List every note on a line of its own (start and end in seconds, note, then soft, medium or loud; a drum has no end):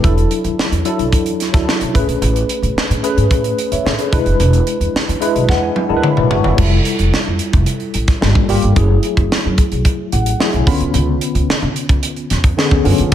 0.00 0.76 F#3 medium
0.00 0.77 D4 medium
0.00 0.77 E4 medium
0.00 0.16 G4 soft
0.00 0.16 B4 medium
0.00 kick loud
0.04 0.23 E1 loud
0.04 0.77 A4 medium
0.04 closed hi-hat medium
0.18 closed hi-hat soft
0.31 closed hi-hat medium
0.44 0.54 E2 medium
0.44 closed hi-hat soft
0.58 muted upright bass stroke soft
0.58 snare loud
0.71 0.81 E2 medium
0.71 closed hi-hat medium
0.85 1.46 F#3 medium
0.85 1.46 D4 medium
0.85 1.46 E4 medium
0.85 1.47 A4 medium
0.85 closed hi-hat medium
0.99 1.09 B1 medium
0.99 closed hi-hat soft
1.12 1.32 E2 medium
1.12 kick medium
1.12 closed hi-hat medium
1.26 closed hi-hat soft
1.40 snare soft
1.40 closed hi-hat medium
1.53 1.64 D2 medium
1.53 1.94 F#3 medium
1.53 1.94 D4 medium
1.53 1.95 E4 medium
1.53 1.95 A4 medium
1.53 kick loud
1.53 snare soft
1.53 closed hi-hat medium
1.69 snare loud
1.81 1.91 B1 medium
1.81 closed hi-hat soft
1.94 2.05 A1 medium
1.94 2.92 A3 medium
1.94 2.92 C#4 medium
1.94 2.92 G#4 medium
1.94 2.92 B4 medium
1.94 kick medium
1.94 closed hi-hat medium
2.08 2.21 A#1 medium
2.08 closed hi-hat soft
2.22 2.41 A1 loud
2.22 closed hi-hat medium
2.36 closed hi-hat soft
2.49 closed hi-hat medium
2.62 2.72 A2 medium
2.62 closed hi-hat soft
2.76 muted upright bass stroke soft
2.76 snare loud
2.90 3.00 A2 medium
2.90 closed hi-hat medium
3.03 3.64 A3 medium
3.03 3.65 C#4 medium
3.03 3.58 G#4 medium
3.03 3.59 B4 medium
3.03 closed hi-hat medium
3.17 3.27 G#2 medium
3.17 closed hi-hat soft
3.31 3.50 A2 medium
3.31 kick medium
3.31 closed hi-hat medium
3.44 closed hi-hat medium
3.58 closed hi-hat medium
3.72 3.81 E2 medium
3.72 3.84 C#5 medium
3.72 3.85 E5 medium
3.72 closed hi-hat medium
3.85 3.95 A2 medium
3.85 3.99 A4 medium
3.85 3.99 C#5 medium
3.85 snare loud
3.99 4.26 G#4 medium
3.99 4.12 B4 medium
3.99 closed hi-hat medium
4.12 4.22 E1 medium
4.12 5.10 G#3 medium
4.12 5.10 D4 medium
4.12 5.10 E4 medium
4.12 5.11 B4 medium
4.12 kick loud
4.12 closed hi-hat medium
4.26 4.36 F1 medium
4.26 closed hi-hat soft
4.40 4.59 E1 loud
4.40 closed hi-hat medium
4.53 closed hi-hat soft
4.67 closed hi-hat medium
4.80 4.90 E2 medium
4.80 closed hi-hat soft
4.94 muted upright bass stroke soft
4.94 snare loud
5.08 5.18 E2 medium
5.08 closed hi-hat soft
5.20 5.82 G#3 medium
5.20 5.83 D4 medium
5.20 5.83 E4 medium
5.20 5.83 B4 medium
5.20 5.47 E5 medium
5.20 closed hi-hat medium
5.35 5.45 B1 medium
5.35 closed hi-hat soft
5.49 5.68 E2 medium
5.49 5.62 F#5 medium
5.49 kick medium
5.49 snare medium
5.62 5.88 G#5 medium
5.76 high tom medium
5.89 6.00 D2 medium
5.89 6.50 G#3 medium
5.89 6.51 D4 medium
5.89 6.51 E4 medium
5.89 5.97 A#4 medium
5.89 6.02 A5 medium
5.96 6.54 B4 medium
6.02 6.16 C#5 medium
6.02 6.16 E5 medium
6.02 6.28 B5 medium
6.02 mid tom medium
6.16 6.27 B1 medium
6.16 6.30 D5 medium
6.16 6.30 F#5 medium
6.16 mid tom medium
6.30 6.41 G1 medium
6.30 6.42 E5 soft
6.30 6.44 G#5 medium
6.30 6.56 C#6 medium
6.30 floor tom medium
6.43 6.55 F#1 medium
6.43 6.70 C#5 soft
6.43 6.70 E5 medium
6.43 floor tom medium
6.57 6.78 F1 loud
6.57 7.55 G3 medium
6.57 7.55 E4 medium
6.57 7.55 F4 medium
6.57 7.56 A4 medium
6.57 kick loud
6.57 crash medium
6.85 closed hi-hat medium
6.99 7.09 F1 medium
6.99 closed hi-hat soft
7.14 snare loud
7.27 7.37 F2 medium
7.39 closed hi-hat medium
7.53 7.63 F1 medium
7.53 kick medium
7.53 closed hi-hat soft
7.66 closed hi-hat medium
7.80 closed hi-hat soft
7.94 8.14 A1 medium
7.94 closed hi-hat medium
8.08 kick loud
8.08 snare soft
8.08 closed hi-hat medium
8.21 8.32 G1 loud
8.21 8.46 G3 medium
8.21 8.46 A#3 medium
8.21 8.46 F4 medium
8.21 8.46 A4 medium
8.21 snare loud
8.35 8.45 A1 medium
8.35 kick medium
8.48 8.59 G#1 medium
8.48 8.73 G3 medium
8.48 8.73 A#3 medium
8.48 8.74 F4 medium
8.48 8.74 G4 medium
8.48 open hi-hat medium
8.62 8.76 G1 medium
8.62 closed hi-hat soft
8.75 8.96 F#1 loud
8.75 9.73 F#3 medium
8.75 9.74 A3 medium
8.75 9.74 E4 medium
8.75 9.74 G#4 medium
8.75 kick loud
8.75 closed hi-hat medium
9.03 closed hi-hat medium
9.17 9.27 F#1 medium
9.17 kick medium
9.17 closed hi-hat soft
9.31 muted upright bass stroke soft
9.31 snare loud
9.45 9.55 F#2 medium
9.58 kick medium
9.58 closed hi-hat medium
9.72 9.82 B1 medium
9.72 closed hi-hat soft
9.85 kick medium
9.85 closed hi-hat medium
10.12 10.32 A1 loud
10.12 10.38 F#5 medium
10.12 closed hi-hat medium
10.26 closed hi-hat medium
10.39 10.64 F#3 medium
10.39 10.64 A3 medium
10.39 10.65 E4 medium
10.39 10.65 G#4 medium
10.39 10.65 G#5 medium
10.39 snare loud
10.53 10.63 B1 medium
10.53 closed hi-hat soft
10.66 10.80 C#2 medium
10.66 11.64 D3 medium
10.66 11.64 B3 medium
10.66 11.65 C#4 medium
10.66 11.65 F4 medium
10.66 10.92 B5 medium
10.66 kick loud
10.66 open hi-hat medium
10.80 10.90 D2 medium
10.80 closed hi-hat soft
10.94 11.13 C#2 loud
10.94 closed hi-hat medium
11.21 closed hi-hat medium
11.35 11.45 C#2 medium
11.35 closed hi-hat soft
11.49 muted upright bass stroke soft
11.49 snare loud
11.62 11.72 C#3 loud
11.76 closed hi-hat medium
11.89 11.99 C#2 medium
11.89 kick medium
11.89 closed hi-hat soft
12.03 closed hi-hat loud
12.16 closed hi-hat soft
12.30 12.50 F2 loud
12.30 snare soft
12.30 closed hi-hat medium
12.44 kick medium
12.44 closed hi-hat medium
12.57 12.82 D3 medium
12.57 12.82 B3 medium
12.57 12.82 C#4 medium
12.57 12.83 G#4 medium
12.57 snare loud
12.71 12.81 D2 medium
12.71 kick medium
12.84 12.95 F#2 medium
12.84 13.09 D3 medium
12.84 13.09 B3 medium
12.84 13.09 C#4 medium
12.84 13.10 F4 medium
12.84 open hi-hat medium
12.98 13.09 F2 medium
12.98 closed hi-hat soft
13.11 13.15 D3 medium